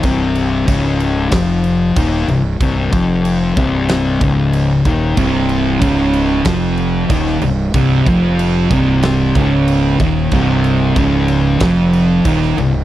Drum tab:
CC |x-x-x-x-x-x-x-x-|x-x-x-x-x-x-x-x-|x-x-x-x-x-x-x-x-|x-x-x-x-x-x-x-x-|
SD |--------o-------|--------o-------|--------o----o--|--------o-------|
BD |o---o---o---o---|o-o---o---o---o-|o---o---o---o---|o-o---o---o---o-|

CC |x-x-x-x-x-x-x-x-|
SD |--------o----o--|
BD |o---o---o---o---|